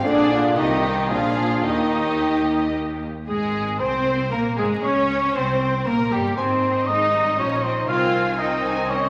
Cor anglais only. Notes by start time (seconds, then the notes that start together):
3.29 G#4
3.80 C5
4.32 A#4
4.58 G#4
4.84 C#5
5.35 C5
5.86 A#4
6.12 G4
6.37 C5
6.87 D#5
7.39 C#5
7.63 C5
7.89 F5
8.39 D#5
8.90 C#5